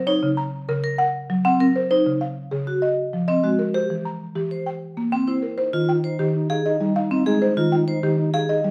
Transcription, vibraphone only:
0.07 D#4
0.84 A#4
1.45 C4
1.60 A#4
1.91 D#4
2.67 F#4
3.28 C4
3.44 F#4
3.74 G4
4.51 C5
5.12 C4
5.28 C5
5.73 F4
6.04 C5
6.50 G#4
7.11 C4
7.26 G#4
7.57 F4
7.88 C5
8.34 G#4

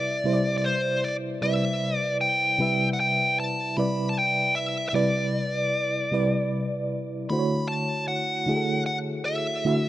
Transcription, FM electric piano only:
Already playing: C3 G3 E4 B4 E5
0.24 C3 G3 E4 C5
0.33 D5
1.41 C3 G3 E4 B4 D5
2.58 C3 G3 E4 B4 E5
3.77 C3 G3 E4 B4 D5
4.93 C3 G3 E4 B4 D5
6.11 C3 G3 E4 B4 D5
7.30 D3 A3 E4 F#4 C5
7.39 C#5
8.46 D3 A3 E4 F#4 G#4
8.56 A4
9.65 D3 A3 E4 F#4 E5

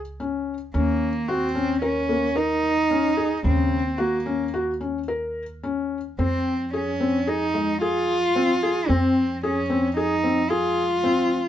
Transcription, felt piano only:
0.20 C#4
0.74 C#4
1.28 F#4
1.55 C#4
1.82 A#4
2.09 A#3
2.36 A#4
2.91 C#4
3.17 G#4
3.44 C#3
3.98 F#4
4.26 C#4
4.54 F#4
4.81 C#4
5.08 A#4
5.63 C#4
6.19 C4
6.73 G#4
7.00 C4
7.27 G#4
7.54 G#3
7.82 G#4
8.36 C4
8.63 G#4
8.89 C4
9.43 G#4
9.70 C4
9.97 G#4
10.24 C4
10.50 G#4
11.04 C4

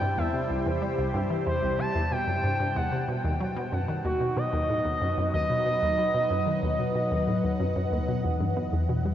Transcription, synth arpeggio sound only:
0.02 G2
0.18 E2
0.34 C3
0.50 C2
0.66 E2
0.82 G3
0.98 C2
1.15 G2
1.31 E3
1.47 E2
1.63 C2
1.79 C3
1.95 E2
2.11 B2
2.27 F#2
2.44 G2
2.60 G2
2.76 E2
2.92 C3
3.08 B2
3.24 D#2
3.40 F#3
3.56 B2
3.72 F#2
3.88 D#3
4.05 D#2
4.21 B2
4.37 B2
4.53 D#2
4.69 A2
4.85 D#2
5.01 F#2
5.18 F#2
5.34 D#2
5.50 B2
5.66 B2
5.82 D#2
5.98 F#3
6.14 B2
6.31 F#2
6.47 D#3
6.63 D#2
6.79 B2
6.95 B2
7.11 D#2
7.27 A2
7.44 D#2
7.60 F#2
7.76 F#2
7.92 D#2
8.08 B2
8.24 E2
8.40 G2
8.57 B3
8.73 E2
8.89 B2
9.05 G3

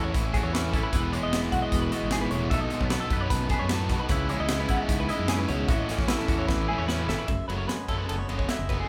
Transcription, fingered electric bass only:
Already playing: E2
0.15 A1
0.43 E2
0.74 A1
0.93 E1
1.23 E1
1.53 B1
1.73 E1
2.03 G#1
2.32 E1
2.52 B1
2.81 B1
3.11 F#2
3.31 B1
3.61 F#2
3.90 B1
4.10 C#2
4.40 C#2
4.70 G#1
4.89 C#2
5.19 F#2
5.49 C#2
5.69 A1
5.99 A1
6.29 E2
6.49 A1
6.78 E2
7.08 G#1
7.29 F#1
7.48 F#1
7.89 F#2
8.10 F#1
8.29 F#1
8.59 F#1

